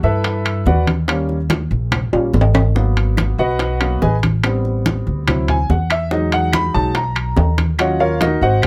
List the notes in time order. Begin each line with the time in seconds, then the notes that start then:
0.03 G2 E4 A4 B4 E5, high bongo, high conga
0.24 high bongo, high conga, high timbale
0.45 high conga, high timbale, claves
0.66 D#2 F#4 B4 D5 F#5, high bongo, low bongo, high conga
0.87 high bongo, high conga, high timbale
1.08 G3 A#3 C#4, high bongo, high timbale, claves
1.29 high bongo, high conga
1.50 high bongo, high conga, high timbale
1.71 A#1, high bongo, high conga
1.92 high bongo, high conga, low conga, high timbale, claves
2.13 A#1 G3 A#3 C#4, high conga, high timbale
2.33 G#1, high bongo, low bongo, high conga
2.41 low timbale
2.54 high bongo, high conga, low timbale, claves
2.75 F#3 A#3 B3, high bongo, high conga
2.97 high bongo, high conga, high timbale
3.17 high bongo, high conga, high timbale, claves
3.38 B1 F#4 B4 D#5 F#5, high bongo, high conga
3.59 high bongo, high conga, high timbale
3.80 F#3 A#3 B3, high conga, high timbale, claves
4.02 A1 G#4 B4 D#5 G#5, high bongo, low bongo, high conga
4.23 high bongo, high conga, high timbale
4.43 G3 B3 C4, high bongo, high conga, high timbale, claves
4.65 high bongo, high conga
4.86 high bongo, high conga, high timbale
5.07 D2, high bongo, high conga
5.27 F#3 C4 E4, high bongo, high conga, low conga, high timbale, claves
5.48 G#5, high conga, low conga, high timbale
5.70 E2 F#5, high bongo, low bongo, high conga
5.90 E5, high bongo, high timbale, claves
6.11 F#3 G#3 D#4 D#5, high bongo, high conga
6.32 F#5, high bongo, high conga, high timbale
6.53 B5, high bongo, high conga, high timbale, claves
6.74 B1 F#3 G#3 D#4 A5, high bongo, high conga
6.95 A#5, high bongo, high conga, high timbale
7.16 high conga, high timbale, claves
7.36 D#2, high bongo, low bongo, high conga, low timbale
7.58 high bongo, high conga, high timbale
7.79 F#3 C#4 F4 F#4 C#5 D#5 F#5, high bongo, high conga, high timbale, claves
8.00 F4 A#4 C#5 F5, high bongo, high conga
8.21 D#4 F#4 A#4 D#5, high bongo, high conga, high timbale
8.41 G#1 F#4 C5 D#5 F#5, high bongo, high conga
8.62 A#3 C4 F#4, high bongo, high conga, low conga, high timbale, claves